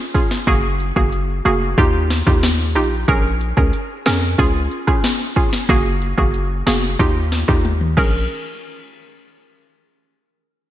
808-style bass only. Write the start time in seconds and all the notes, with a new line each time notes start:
0.47 F#1
0.96 F#1
1.45 F1
1.78 D#2
2.27 D#2
2.76 A#1
3.08 A#1
3.57 C#2
4.06 F2
4.39 C#2
5.69 F#1
6.18 F#1
6.67 F1
6.99 D#2
7.49 D#2
7.97 A#1